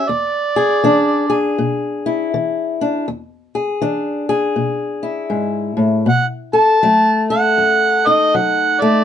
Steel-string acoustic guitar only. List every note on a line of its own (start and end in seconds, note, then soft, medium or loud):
0.09 0.77 E2 medium
0.56 1.29 G#4 medium
0.84 1.52 E3 medium
0.84 2.79 D4 medium
1.30 3.04 G#4 medium
1.58 2.27 B2 medium
2.06 3.05 E4 medium
2.34 3.02 E3 medium
2.81 3.05 D4 medium
3.08 3.77 E2 medium
3.55 4.28 G#4 medium
3.81 4.51 E3 medium
3.81 6.04 D4 medium
4.29 6.05 G#4 medium
4.56 5.26 B2 medium
5.03 6.04 E4 medium
5.30 5.76 G#2 medium
5.77 6.07 A2 medium
6.06 6.76 B2 medium
6.53 7.30 A4 medium
6.83 7.53 F#3 medium
6.83 8.80 A3 medium
7.30 9.04 A4 medium
7.58 8.28 F#2 medium
8.07 9.04 D#4 medium
8.35 9.04 F#3 medium
8.82 9.04 A3 medium